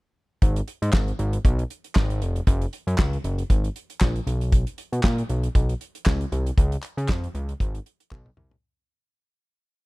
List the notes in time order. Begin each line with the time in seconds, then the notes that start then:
0.42 G#1, kick, closed hi-hat
0.56 closed hi-hat
0.68 closed hi-hat
0.82 G#2, closed hi-hat
0.93 G#1, kick, snare, clap
1.08 closed hi-hat
1.19 G#1, closed hi-hat
1.33 closed hi-hat
1.45 B1, kick, closed hi-hat
1.59 closed hi-hat
1.70 closed hi-hat
1.84 closed hi-hat
1.95 G#1, kick, snare, clap
2.10 closed hi-hat
2.22 F1, closed hi-hat
2.36 closed hi-hat
2.47 F#1, kick, closed hi-hat
2.62 closed hi-hat
2.73 closed hi-hat
2.87 F#2, closed hi-hat
2.98 C#2, kick, snare, clap
3.13 closed hi-hat
3.24 F#1, closed hi-hat
3.38 closed hi-hat
3.50 G#1, kick, closed hi-hat
3.64 closed hi-hat
3.76 closed hi-hat
3.90 closed hi-hat
4.01 A#1, kick, snare, clap
4.16 closed hi-hat
4.27 B1, closed hi-hat
4.41 closed hi-hat
4.52 kick, closed hi-hat
4.67 closed hi-hat
4.78 closed hi-hat
4.92 B2, closed hi-hat
5.03 A#2, kick, snare, clap
5.18 closed hi-hat
5.29 B1, closed hi-hat
5.43 closed hi-hat
5.55 B1, kick, closed hi-hat
5.69 closed hi-hat
5.81 closed hi-hat
5.95 closed hi-hat
6.06 C#2, kick, snare, clap
6.21 closed hi-hat
6.32 C2, closed hi-hat
6.46 closed hi-hat
6.58 C#2, kick, closed hi-hat
6.72 closed hi-hat
6.83 clap, closed hi-hat
6.97 C#3, closed hi-hat
7.08 F2, kick, snare, clap
7.24 closed hi-hat
7.34 C#2, closed hi-hat
7.49 closed hi-hat
7.60 G#1, kick, closed hi-hat
7.75 closed hi-hat
7.86 closed hi-hat
8.00 closed hi-hat
8.11 B1, kick, clap, high tom
8.26 mid tom
8.37 C2, mid tom
8.51 floor tom